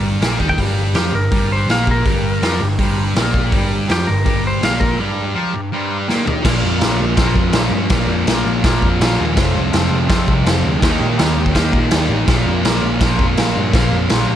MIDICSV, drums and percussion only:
0, 0, Header, 1, 2, 480
1, 0, Start_track
1, 0, Tempo, 366972
1, 760, Time_signature, 4, 2, 24, 8
1, 8918, Tempo, 363636
1, 18868, End_track
2, 0, Start_track
2, 0, Title_t, "Drums"
2, 286, Note_on_c, 9, 46, 60
2, 295, Note_on_c, 9, 38, 115
2, 417, Note_off_c, 9, 46, 0
2, 426, Note_off_c, 9, 38, 0
2, 523, Note_on_c, 9, 36, 76
2, 642, Note_off_c, 9, 36, 0
2, 642, Note_on_c, 9, 36, 81
2, 761, Note_off_c, 9, 36, 0
2, 761, Note_on_c, 9, 36, 88
2, 761, Note_on_c, 9, 46, 57
2, 891, Note_off_c, 9, 36, 0
2, 892, Note_off_c, 9, 46, 0
2, 1235, Note_on_c, 9, 46, 53
2, 1244, Note_on_c, 9, 38, 100
2, 1366, Note_off_c, 9, 46, 0
2, 1375, Note_off_c, 9, 38, 0
2, 1723, Note_on_c, 9, 36, 104
2, 1723, Note_on_c, 9, 46, 50
2, 1854, Note_off_c, 9, 36, 0
2, 1854, Note_off_c, 9, 46, 0
2, 2214, Note_on_c, 9, 46, 55
2, 2223, Note_on_c, 9, 38, 107
2, 2345, Note_off_c, 9, 46, 0
2, 2354, Note_off_c, 9, 38, 0
2, 2449, Note_on_c, 9, 36, 86
2, 2580, Note_off_c, 9, 36, 0
2, 2690, Note_on_c, 9, 36, 107
2, 2698, Note_on_c, 9, 46, 52
2, 2821, Note_off_c, 9, 36, 0
2, 2828, Note_off_c, 9, 46, 0
2, 3172, Note_on_c, 9, 46, 59
2, 3181, Note_on_c, 9, 38, 104
2, 3303, Note_off_c, 9, 46, 0
2, 3312, Note_off_c, 9, 38, 0
2, 3648, Note_on_c, 9, 36, 103
2, 3648, Note_on_c, 9, 46, 55
2, 3778, Note_off_c, 9, 36, 0
2, 3778, Note_off_c, 9, 46, 0
2, 4133, Note_on_c, 9, 46, 59
2, 4142, Note_on_c, 9, 38, 110
2, 4263, Note_off_c, 9, 46, 0
2, 4272, Note_off_c, 9, 38, 0
2, 4370, Note_on_c, 9, 36, 85
2, 4500, Note_off_c, 9, 36, 0
2, 4607, Note_on_c, 9, 46, 62
2, 4609, Note_on_c, 9, 36, 113
2, 4738, Note_off_c, 9, 46, 0
2, 4740, Note_off_c, 9, 36, 0
2, 5090, Note_on_c, 9, 46, 52
2, 5099, Note_on_c, 9, 38, 98
2, 5220, Note_off_c, 9, 46, 0
2, 5230, Note_off_c, 9, 38, 0
2, 5571, Note_on_c, 9, 36, 105
2, 5571, Note_on_c, 9, 46, 51
2, 5702, Note_off_c, 9, 36, 0
2, 5702, Note_off_c, 9, 46, 0
2, 6052, Note_on_c, 9, 46, 56
2, 6061, Note_on_c, 9, 38, 110
2, 6183, Note_off_c, 9, 46, 0
2, 6192, Note_off_c, 9, 38, 0
2, 6290, Note_on_c, 9, 36, 83
2, 6421, Note_off_c, 9, 36, 0
2, 7971, Note_on_c, 9, 38, 61
2, 8102, Note_off_c, 9, 38, 0
2, 8206, Note_on_c, 9, 43, 83
2, 8337, Note_off_c, 9, 43, 0
2, 8434, Note_on_c, 9, 36, 106
2, 8435, Note_on_c, 9, 49, 112
2, 8435, Note_on_c, 9, 57, 62
2, 8444, Note_on_c, 9, 38, 118
2, 8565, Note_off_c, 9, 36, 0
2, 8565, Note_off_c, 9, 49, 0
2, 8565, Note_off_c, 9, 57, 0
2, 8574, Note_off_c, 9, 38, 0
2, 8909, Note_on_c, 9, 57, 64
2, 8918, Note_on_c, 9, 38, 113
2, 9041, Note_off_c, 9, 57, 0
2, 9050, Note_off_c, 9, 38, 0
2, 9382, Note_on_c, 9, 57, 58
2, 9387, Note_on_c, 9, 36, 107
2, 9391, Note_on_c, 9, 38, 107
2, 9514, Note_off_c, 9, 57, 0
2, 9519, Note_off_c, 9, 36, 0
2, 9523, Note_off_c, 9, 38, 0
2, 9628, Note_on_c, 9, 36, 91
2, 9760, Note_off_c, 9, 36, 0
2, 9855, Note_on_c, 9, 57, 61
2, 9864, Note_on_c, 9, 38, 125
2, 9987, Note_off_c, 9, 57, 0
2, 9996, Note_off_c, 9, 38, 0
2, 10342, Note_on_c, 9, 57, 68
2, 10350, Note_on_c, 9, 36, 111
2, 10351, Note_on_c, 9, 38, 113
2, 10474, Note_off_c, 9, 57, 0
2, 10482, Note_off_c, 9, 36, 0
2, 10483, Note_off_c, 9, 38, 0
2, 10837, Note_on_c, 9, 57, 62
2, 10846, Note_on_c, 9, 38, 120
2, 10969, Note_off_c, 9, 57, 0
2, 10978, Note_off_c, 9, 38, 0
2, 11320, Note_on_c, 9, 57, 59
2, 11323, Note_on_c, 9, 36, 103
2, 11329, Note_on_c, 9, 38, 116
2, 11452, Note_off_c, 9, 57, 0
2, 11455, Note_off_c, 9, 36, 0
2, 11461, Note_off_c, 9, 38, 0
2, 11565, Note_on_c, 9, 36, 92
2, 11697, Note_off_c, 9, 36, 0
2, 11813, Note_on_c, 9, 57, 72
2, 11822, Note_on_c, 9, 38, 127
2, 11945, Note_off_c, 9, 57, 0
2, 11954, Note_off_c, 9, 38, 0
2, 12283, Note_on_c, 9, 57, 70
2, 12287, Note_on_c, 9, 36, 115
2, 12293, Note_on_c, 9, 38, 120
2, 12415, Note_off_c, 9, 57, 0
2, 12419, Note_off_c, 9, 36, 0
2, 12425, Note_off_c, 9, 38, 0
2, 12764, Note_on_c, 9, 57, 64
2, 12774, Note_on_c, 9, 38, 123
2, 12896, Note_off_c, 9, 57, 0
2, 12906, Note_off_c, 9, 38, 0
2, 13243, Note_on_c, 9, 57, 56
2, 13245, Note_on_c, 9, 36, 107
2, 13252, Note_on_c, 9, 38, 112
2, 13375, Note_off_c, 9, 57, 0
2, 13377, Note_off_c, 9, 36, 0
2, 13384, Note_off_c, 9, 38, 0
2, 13488, Note_on_c, 9, 36, 89
2, 13620, Note_off_c, 9, 36, 0
2, 13730, Note_on_c, 9, 57, 65
2, 13739, Note_on_c, 9, 38, 117
2, 13862, Note_off_c, 9, 57, 0
2, 13871, Note_off_c, 9, 38, 0
2, 14206, Note_on_c, 9, 36, 114
2, 14208, Note_on_c, 9, 57, 67
2, 14217, Note_on_c, 9, 38, 124
2, 14338, Note_off_c, 9, 36, 0
2, 14340, Note_off_c, 9, 57, 0
2, 14349, Note_off_c, 9, 38, 0
2, 14687, Note_on_c, 9, 57, 59
2, 14696, Note_on_c, 9, 38, 121
2, 14819, Note_off_c, 9, 57, 0
2, 14828, Note_off_c, 9, 38, 0
2, 15045, Note_on_c, 9, 36, 86
2, 15164, Note_off_c, 9, 36, 0
2, 15164, Note_on_c, 9, 36, 90
2, 15165, Note_on_c, 9, 57, 60
2, 15174, Note_on_c, 9, 38, 108
2, 15296, Note_off_c, 9, 36, 0
2, 15297, Note_off_c, 9, 57, 0
2, 15306, Note_off_c, 9, 38, 0
2, 15404, Note_on_c, 9, 36, 91
2, 15536, Note_off_c, 9, 36, 0
2, 15638, Note_on_c, 9, 57, 71
2, 15647, Note_on_c, 9, 38, 125
2, 15770, Note_off_c, 9, 57, 0
2, 15779, Note_off_c, 9, 38, 0
2, 16123, Note_on_c, 9, 57, 67
2, 16126, Note_on_c, 9, 36, 121
2, 16132, Note_on_c, 9, 38, 115
2, 16255, Note_off_c, 9, 57, 0
2, 16258, Note_off_c, 9, 36, 0
2, 16264, Note_off_c, 9, 38, 0
2, 16613, Note_on_c, 9, 57, 67
2, 16622, Note_on_c, 9, 38, 112
2, 16745, Note_off_c, 9, 57, 0
2, 16754, Note_off_c, 9, 38, 0
2, 17086, Note_on_c, 9, 57, 61
2, 17088, Note_on_c, 9, 36, 111
2, 17095, Note_on_c, 9, 38, 114
2, 17218, Note_off_c, 9, 57, 0
2, 17220, Note_off_c, 9, 36, 0
2, 17227, Note_off_c, 9, 38, 0
2, 17329, Note_on_c, 9, 36, 96
2, 17461, Note_off_c, 9, 36, 0
2, 17571, Note_on_c, 9, 57, 68
2, 17580, Note_on_c, 9, 38, 119
2, 17703, Note_off_c, 9, 57, 0
2, 17712, Note_off_c, 9, 38, 0
2, 18048, Note_on_c, 9, 36, 126
2, 18056, Note_on_c, 9, 57, 60
2, 18065, Note_on_c, 9, 38, 107
2, 18180, Note_off_c, 9, 36, 0
2, 18188, Note_off_c, 9, 57, 0
2, 18197, Note_off_c, 9, 38, 0
2, 18524, Note_on_c, 9, 57, 58
2, 18534, Note_on_c, 9, 38, 114
2, 18656, Note_off_c, 9, 57, 0
2, 18666, Note_off_c, 9, 38, 0
2, 18868, End_track
0, 0, End_of_file